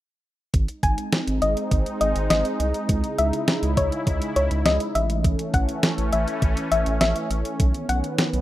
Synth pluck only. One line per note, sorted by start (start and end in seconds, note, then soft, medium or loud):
0.83 0.93 G#5 medium
1.42 1.83 D#5 medium
2.01 2.11 D#5 medium
2.30 2.72 D#5 medium
3.18 3.29 E5 medium
3.77 4.19 C#5 medium
4.36 4.46 C#5 medium
4.66 4.76 D#5 medium
4.95 5.05 E5 medium
5.54 5.64 F#5 medium
6.13 6.54 E5 medium
6.72 6.82 E5 medium
7.01 7.42 E5 medium
7.89 7.99 F#5 medium